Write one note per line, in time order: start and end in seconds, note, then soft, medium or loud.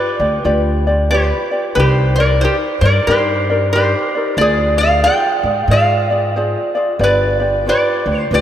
0.00 0.20 F4 medium
0.00 0.20 G4 medium
0.00 0.20 B4 medium
0.00 1.09 B4 medium
0.00 0.19 D5 medium
0.00 1.15 D5 medium
0.19 0.36 D2 medium
0.19 0.43 F4 soft
0.19 0.45 G4 soft
0.19 0.44 D5 soft
0.44 1.30 D2 medium
0.44 0.85 F4 medium
0.44 0.86 G4 medium
0.44 0.85 B4 medium
0.44 0.86 D5 medium
0.87 1.10 F4 soft
0.87 1.11 G4 medium
0.87 1.11 D5 medium
1.11 1.51 F4 medium
1.11 1.51 G4 medium
1.11 1.74 G4 medium
1.11 1.75 B4 medium
1.11 1.51 B4 medium
1.11 1.50 D5 medium
1.51 1.76 F4 soft
1.51 1.75 G4 soft
1.51 1.76 D5 medium
1.75 2.45 C2 medium
1.75 2.17 D#4 medium
1.75 2.17 G4 medium
1.75 2.17 A#4 medium
1.75 1.86 B4 medium
1.75 2.17 D5 medium
1.80 2.16 G4 medium
1.86 2.17 C5 medium
2.16 2.42 D5 medium
2.16 2.43 D5 soft
2.20 2.42 D#4 soft
2.20 2.43 A#4 soft
2.20 2.41 A#4 medium
2.41 2.83 D#4 medium
2.41 2.83 G4 medium
2.41 2.55 G4 medium
2.41 2.83 A#4 medium
2.41 2.52 C5 medium
2.41 2.82 D5 medium
2.81 2.98 G2 medium
2.81 3.08 A#4 soft
2.81 3.08 D5 medium
2.85 3.08 D#4 soft
2.85 3.07 A#4 medium
3.07 3.93 G2 medium
3.07 3.49 D#4 medium
3.07 3.48 G4 medium
3.07 3.71 G4 medium
3.07 3.49 A#4 medium
3.07 3.71 C5 medium
3.07 3.49 D5 medium
3.50 3.75 D#4 soft
3.50 3.75 A#4 medium
3.50 3.74 D5 medium
3.73 4.15 D#4 medium
3.73 4.14 G4 medium
3.73 4.36 G4 medium
3.73 4.15 A#4 medium
3.73 4.40 C5 medium
3.77 4.14 D5 medium
4.15 4.40 D#4 soft
4.15 4.40 A#4 soft
4.15 4.39 D5 medium
4.37 5.06 D2 medium
4.37 4.80 F4 medium
4.37 4.80 G#4 medium
4.37 4.80 C5 medium
4.37 4.79 D5 medium
4.41 4.78 G#4 medium
4.41 4.81 D5 medium
4.78 5.03 D5 medium
4.78 5.03 F5 loud
4.82 5.04 F4 soft
4.82 5.05 G#4 soft
4.82 5.06 D5 medium
5.04 5.45 F4 medium
5.04 5.46 G#4 medium
5.04 5.45 C5 medium
5.04 5.67 D5 medium
5.04 5.44 D5 medium
5.04 5.71 G5 loud
5.43 5.60 G#2 medium
5.43 5.71 G#4 soft
5.43 5.70 D5 medium
5.47 5.70 F4 soft
5.68 6.54 G#2 medium
5.68 6.11 F4 medium
5.68 6.10 C5 medium
5.68 6.72 F5 medium
5.72 6.11 G#4 medium
5.72 6.09 D5 medium
5.72 6.73 D5 medium
6.10 6.35 F4 soft
6.10 6.36 G#4 soft
6.10 6.36 D5 medium
6.36 6.76 F4 medium
6.36 6.75 G#4 medium
6.36 6.76 C5 medium
6.36 6.74 D5 medium
6.75 6.99 F4 soft
6.75 6.99 G#4 medium
6.75 7.00 D5 medium
6.99 7.69 G1 medium
6.99 7.41 F4 medium
6.99 7.40 G4 medium
6.99 7.40 B4 medium
6.99 7.39 D5 medium
7.03 7.64 B4 medium
7.03 7.68 D5 medium
7.40 7.66 F4 soft
7.40 7.67 G4 soft
7.40 7.66 D5 medium
7.66 8.07 F4 medium
7.66 8.06 G4 medium
7.66 8.06 B4 medium
7.66 8.29 B4 medium
7.66 8.06 D5 medium
7.66 8.19 D5 medium
8.06 8.22 D2 medium
8.06 8.32 F4 soft
8.06 8.32 G4 soft
8.06 8.32 D5 medium
8.19 8.33 C5 medium
8.31 8.41 D2 medium
8.31 8.41 F4 medium
8.31 8.41 G4 medium
8.31 8.41 B4 medium
8.31 8.41 D5 medium
8.31 8.41 F5 medium